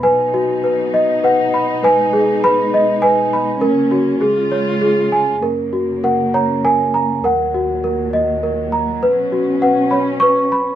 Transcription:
<<
  \new Staff \with { instrumentName = "Celesta" } { \time 3/4 \key fis \major \tempo 4 = 100 << { gis''4. r8 fis''4 | gis''4 b''4 gis''4~ | gis''2 r4 | r4 fis''8 ais''8 gis''4 |
fis''2 r4 | r4 fis''8 b''8 cis'''4 | } \\ { b'8 fis'8 b'8 dis''8 b'8 b''8 | b'8 gis'8 b'8 dis''8 b'8 b''8 | ais'8 fis'8 gis'8 cis''8 gis'8 gis''8 | ais'8 fis'8 ais'8 cis''8 ais'8 ais''8 |
ais'8 fis'8 ais'8 dis''8 ais'8 ais''8 | b'8 fis'8 b'8 cis''8 b'8 b''8 | } >> }
  \new Staff \with { instrumentName = "String section" } { \clef bass \time 3/4 \key fis \major << { dis'2.~ | dis'2. | <cis fis cis'>4 <cis eis'>2 | <fis, ais>2. |
<dis, fis>2. | <b, cis'>2. | } \\ { <b, fis>2. | gis2. | ais4 gis2 | cis2. |
ais,2. | r2. | } >> }
>>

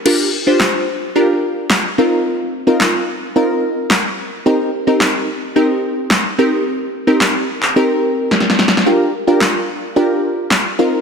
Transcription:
<<
  \new Staff \with { instrumentName = "Synth stab" } { \time 4/4 \key g \minor \tempo 4 = 109 <d' f' g' bes'>8 r16 <d' f' g' c''>8. r8 <d' f' g' bes'>4~ <d' f' g' bes'>16 r16 <c' ees' f' bes'>8~ | <c' ees' f' bes'>8 r16 <c' ees' f' bes'>8. r8 <c' ees' f' bes'>4~ <c' ees' f' bes'>16 r8. | <c' ees' g' bes'>8 r16 <c' ees' g' bes'>8. r8 <c' ees' g' bes'>4~ <c' ees' g' bes'>16 r16 <c' ees' g' bes'>8~ | <c' ees' g' bes'>8 r16 <c' ees' g' bes'>8. r8 <c' ees' g' bes'>4~ <c' ees' g' bes'>16 r8. |
<d' f' g' bes'>8 r16 <d' f' g' bes'>8. r8 <d' f' g' bes'>4~ <d' f' g' bes'>16 r16 <c' ees' f' bes'>8 | }
  \new DrumStaff \with { instrumentName = "Drums" } \drummode { \time 4/4 cymc4 <hc sn>4 r4 <hc sn>4 | r4 <hc sn>4 r4 <hc sn>4 | r4 <hc sn>4 r4 <hc sn>4 | r4 <hc sn>8. hc16 r4 \tuplet 3/2 { sn16 sn16 sn16 sn16 sn16 sn16 } |
r4 <hc sn>4 r4 <hc sn>4 | }
>>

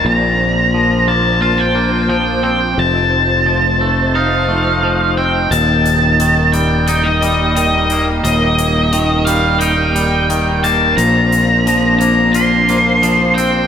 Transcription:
<<
  \new Staff \with { instrumentName = "Lead electric guitar" } { \time 4/4 \key ees \lydian \tempo 4 = 88 bes''4. a''8 a''16 g''8. g''8 g''8 | a''2 f''4. g''8 | a''4. g''8 g''16 ees''8. ees''8. r16 | ees''4. f''8 g''4. a''8 |
bes''4. bes''8 c'''4. g''8 | }
  \new Staff \with { instrumentName = "String section" } { \time 4/4 \key ees \lydian << { <bes d' c''>1 | <a ees' c''>1 | <bes g'>1~ | <bes g'>1 |
<d' c''>1 | } \\ { <c' f'>1~ | <c' f'>1 | r1 | r1 |
<c' f'>1 | } >> }
  \new Staff \with { instrumentName = "Clean electric guitar" } { \clef bass \time 4/4 \key ees \lydian bes,4 f8 bes8 f'8 bes8 f8 c'8 | f,4 f8 a8 ees'8 a8 f8 c'8 | ees,4 ees8 g8 ees'8 g8 ees8 bes8 | ees,4 ees8 g8 ees'8 g8 ees8 bes8 |
bes,4 f8 bes8 f'8 bes8 f8 c'8 | }
  \new Staff \with { instrumentName = "Fingered electric bass" } { \clef bass \time 4/4 \key ees \lydian bes,,1 | f,,1 | ees,,1 | ees,,1 |
bes,,1 | }
  \new DrumStaff \with { instrumentName = "Drums" } \drummode { \time 4/4 r4 r4 r4 r4 | r4 r4 r4 r4 | hh8 hh8 hh8 hh8 hh8 hh8 hh8 hh8 | hh8 hh8 hh8 hh8 hh8 hh8 hh8 hh8 |
hh8 hh8 hh8 hh8 hh8 hh8 hh8 hh8 | }
>>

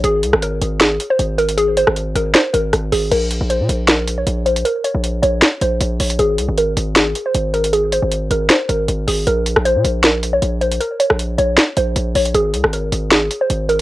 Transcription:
<<
  \new Staff \with { instrumentName = "Synth pluck" } { \time 4/4 \key bes \minor \tempo 4 = 156 aes'4 bes'4 aes'8. c''8. bes'8 | aes'8 c''4 bes'8 c''8 bes'4 aes'8 | bes'4 c''4 bes'8. des''8. c''8 | bes'8 des''4 des''4 c''4 des''8 |
aes'4 bes'4 aes'8. c''8. bes'8 | aes'8 c''4 bes'8 c''8 bes'4 aes'8 | bes'4 c''4 bes'8. des''8. c''8 | bes'8 des''4 des''4 c''4 des''8 |
aes'4 bes'4 aes'8. c''8. bes'8 | }
  \new Staff \with { instrumentName = "808-style bass" } { \clef bass \time 4/4 \key bes \minor aes,,8 c,16 aes,,8. aes,,4 r8 aes,,4~ | aes,,8. aes,,8. aes,,8 r8 aes,,8 aes,,8 aes,,8 | bes,,8. bes,,8 bes,16 bes,,4. bes,,4 | r8. bes,,8. bes,,8 r8 bes,,8 bes,,8 bes,,8 |
aes,,8 c,16 aes,,8. aes,,4 r8 aes,,4~ | aes,,8. aes,,8. aes,,8 r8 aes,,8 aes,,8 aes,,8 | bes,,8. bes,,8 bes,16 bes,,4. bes,,4 | r8. bes,,8. bes,,8 r8 bes,,8 bes,,8 bes,,8 |
aes,,8 c,16 aes,,8. aes,,4 r8 aes,,4 | }
  \new DrumStaff \with { instrumentName = "Drums" } \drummode { \time 4/4 hh8 hh16 ss16 hh8 hh8 <hh sn>8 hh8 hh8 hh16 hh16 | hh8 hh16 ss16 hh8 hh8 <hh sn>8 hh8 <hh ss>8 hho8 | <cymc hh>8 hh8 hh8 hh8 <hh sn>8 hh8 hh8 hh16 hh16 | hh8 hh8 hh8 hh8 <hh sn>8 hh8 hh8 <hh hho>16 hh16 |
hh8 hh8 hh8 hh8 <hh sn>8 hh8 hh8 hh16 hh16 | hh8 hh8 hh8 hh8 <hh sn>8 hh8 hh8 hho8 | hh8 hh16 ss16 hh8 hh8 <hh sn>8 hh8 hh8 hh16 hh16 | hh8 hh16 ss16 hh8 hh8 <hh sn>8 hh8 hh8 <hh hho>16 hh16 |
hh8 hh16 ss16 hh8 hh8 <hh sn>8 hh8 hh8 hh8 | }
>>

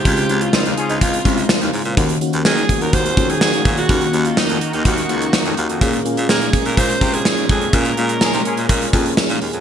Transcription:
<<
  \new Staff \with { instrumentName = "Alto saxophone" } { \time 4/4 \key ees \mixolydian \tempo 4 = 125 g'8. f'16 ees'8. ees'16 f'4. r8 | r4 aes'8. bes'16 c''8. aes'16 aes'8. ges'16~ | ges'8. f'16 ees'8. ees'16 ges'4. r8 | r4 aes'8. bes'16 c''8. aes'8. aes'8 |
bes'2. r4 | }
  \new Staff \with { instrumentName = "Analog synth pad" } { \time 4/4 \key ees \mixolydian << { <des aes f'>1 | <ees bes ges'>1~ | <ees bes ges'>1 | <aes des'>1~ |
<aes des'>1 | } \\ { c''1 | des'1 | ees'1 | r1 |
r1 | } >> }
  \new Staff \with { instrumentName = "FM electric piano" } { \time 4/4 \key ees \mixolydian <aes c' des' f'>8 <aes c' des' f'>4 r4 <aes c' des' f'>4 r8 | <bes des' ees' ges'>8 <bes des' ees' ges'>4 r4 <bes des' ees' ges'>4 r8 | <bes des' ees' ges'>8 <bes des' ees' ges'>4 r4 <bes des' ees' ges'>4 r8 | <bes des' f' aes'>8 <bes des' f' aes'>4 r4 <bes des' f' aes'>4 r8 |
<bes des' f' aes'>8 <bes des' f' aes'>4 r4 <bes des' f' aes'>4 r8 | }
  \new Staff \with { instrumentName = "FM electric piano" } { \clef bass \time 4/4 \key ees \mixolydian des4. r2 r8 | ees4. r2 r8 | ees4. r2 r8 | bes,4. r2 r8 |
bes,4. r2 r8 | }
  \new Staff \with { instrumentName = "Horn section" } { \time 4/4 \key ees \mixolydian r4 <des c' f'>16 r16 <f des' aes'>8 r2 | r1 | r1 | r1 |
r4 <f des' aes'>16 r16 <f des' aes'>8 r2 | }
  \new Staff \with { instrumentName = "Baritone saxophone" } { \clef bass \time 4/4 \key ees \mixolydian des,8 des,8 r16 ees,16 r16 des,16 des,8 c,8 r16 ees,16 aes,16 bes,16 | ees,8 r16 ees,16 ees8 r16 ees,16 ees,8 f,8 r8 bes,8 | ees,8 ees,8 r16 f,16 r16 ees,16 ees,8 des,8 r16 f,16 ees,16 f,16 | bes,8 r16 bes,16 bes8 r16 bes,16 bes,8 c8 r8 f,8 |
bes,8 bes,8 r16 c16 r16 bes,16 bes,8 f,8 r16 bes,16 ees,16 f,16 | }
  \new DrumStaff \with { instrumentName = "Drums" } \drummode { \time 4/4 <hh bd>16 hh16 hh16 hh16 <sn tamb>16 hh16 hh16 hh16 <hh bd>16 hh16 <hh bd>16 hh16 <sn tamb>16 hh16 hho16 hh16 | <hh bd>16 hh16 hh16 hh16 <sn tamb>16 hh16 <hh bd>16 hh16 <hh bd>16 hh16 <hh bd>16 hh16 <sn tamb>16 hh16 <hh bd>16 hh16 | <hh bd>16 hh16 hh16 hh16 <sn tamb>16 hh16 hh16 hh16 <hh bd>16 hh16 hh16 hh16 <sn tamb>16 hh16 hh16 hh16 | <hh bd>16 hh16 hh16 hh16 <sn tamb>16 hh16 <hh bd>16 hh16 <hh bd>16 hh16 <hh bd>16 hh16 <sn tamb>16 hh16 <hh bd>16 hh16 |
<hh bd>16 hh16 hh16 hh16 <sn tamb>16 hh16 hh16 hh16 <hh bd>16 hh16 <hh bd>16 hh16 <sn tamb>16 hh16 hho16 hh16 | }
>>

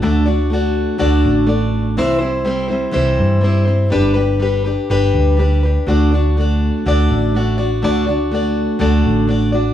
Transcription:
<<
  \new Staff \with { instrumentName = "Steel-string acoustic guitar" } { \time 4/4 \key d \mixolydian \tempo 4 = 123 <d a d' fis' d''>8 <d' fis' d''>8 <a d' fis' d''>4 <d a d' fis' d''>4 <a d' fis' d''>4 | <c e g c' e' c''>8 <g c' e' c''>8 <g c' e' c''>8 <g c' e' c''>8 <c e g c' e' c''>4 <g c' e' c''>8 <g c' e' c''>8 | <g d' g' b'>8 <d' g' b'>8 <g d' g' b'>8 <d' g' b'>8 <g d' g' b'>4 <g d' g' b'>8 <d' g' b'>8 | <d a d' fis' d''>8 <d' fis' d''>8 <a d' fis' d''>4 <d a d' fis' d''>4 <a d' fis' d''>8 <d' fis' d''>8 |
<d a d' fis' d''>8 <d' fis' d''>8 <a d' fis' d''>4 <d a d' fis' d''>4 <a d' fis' d''>8 <d' fis' d''>8 | }
  \new Staff \with { instrumentName = "Picked electric bass" } { \clef bass \time 4/4 \key d \mixolydian d,2 d,8 a,,4. | c,2 c,8 g,4. | g,,2 g,,8 d,4. | d,2 d,8 a,,4. |
d,2 d,8 a,,4. | }
>>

